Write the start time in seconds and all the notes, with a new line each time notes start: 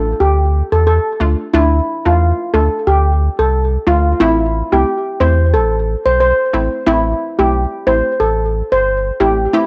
Already playing: A1
0.20 D2 G4
0.72 E2 A4
0.87 A4
1.20 D2 A3 D4 F4
1.54 D2 A3 D4 E4 F4
2.06 E2 A3 D4 F4
2.54 D2 A3 D4 F4 A4
2.87 D2 G4
3.39 C2 A4
3.87 D2 A3 D4 F4
4.20 A1 A3 C4 E4
4.72 C2 A3 C4 E4 G4
5.20 E2 A3 C4 E4 C5
5.53 A1 A4
6.06 B1 C5
6.20 C5
6.53 A1 A3 C4 E4
6.86 A1 A3 C4 E4
7.39 B1 A3 C4 E4 G4
7.87 A1 A3 C4 E4 C5
8.20 A1 A4
8.72 G1 C5
9.20 A1 A3 C4 E4 G4
9.53 A3 C4 E4 G4